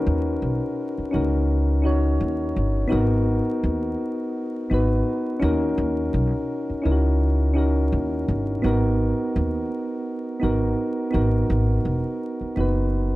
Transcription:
Already playing: synth keys C#4 D#4 F#4 A#4 B4
0.07 upright bass D#2
0.42 upright bass B1
0.98 muted upright bass stroke
1.11 upright bass C#2, synth keys C#4 D#4 F#4
1.16 synth keys A#4
1.82 synth keys C#4 D#4 F#4
1.86 synth keys C#5
2.21 upright bass D#2
2.56 upright bass G1
2.88 synth keys B3 D#4 F#4
2.92 upright bass G#1, synth keys A#4
3.63 upright bass D#2
4.70 upright bass G#1, synth keys B3 D#4 F#4
4.74 synth keys B4
5.40 upright bass D#2, synth keys C#4 D#4 F#4
5.44 synth keys A#4
5.78 upright bass D#2
6.14 upright bass B1
6.69 muted upright bass stroke
6.82 upright bass C#2, synth keys C#4 D#4 E4
6.86 synth keys A#4
6.91 synth keys F#4
7.54 synth keys C#4 D#4 F#4
7.58 synth keys A#4
7.92 upright bass D#2
8.28 upright bass G1
8.62 upright bass G#1, synth keys B3 D#4 F#4
8.66 synth keys A#4
9.36 upright bass D#2
10.40 upright bass G#1, synth keys B3 D#4 F#4
10.44 synth keys A#4
11.11 upright bass G#1, synth keys B3 D#4 F#4
11.15 synth keys A#4
11.50 upright bass G#1
11.85 upright bass E1
12.41 muted upright bass stroke
12.56 upright bass F#1, synth keys B3 D#4 F#4
12.60 synth keys B4

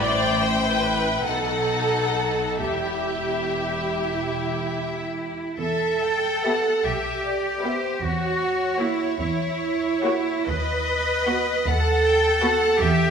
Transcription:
0.00 double bass section A1, cello section A2, violin section E4 C5 G5, viola section D5
0.42 viola section C5
0.64 violin section B4
0.84 viola section B4
1.25 double bass section B1, cello section B2, violin section D#4 A4 F#5, viola section A4
2.62 double bass section E1, cello section E2, violin section E4 G4 E5, viola section G4
4.04 cello section E4
5.59 double bass section E2, cello section A4, violin section E5
6.02 violin section G5
6.44 viola section B3 G4, violin section B4 E5 F#5
6.84 double bass section B1, cello section G4, violin section E5
7.24 violin section D5
7.63 viola section B3 G4, violin section B4 C5 E5
8.01 double bass section E2, cello section F#4, violin section C#5
8.78 viola section A#3 F#4, cello section E4, violin section C#5 F#5
9.18 double bass section E2, cello section E4
10.03 viola section A#3 F#4, violin section C#5 F#5
10.47 double bass section D#2, cello section B4, violin section D#5
11.26 viola section B3 F#4, violin section B4 F#5
11.67 double bass section D#2, cello section A4, violin section F#5
12.05 violin section G5
12.43 viola section B3 F#4, violin section B4 F#5
12.80 double bass section E2, cello section G4, violin section E5

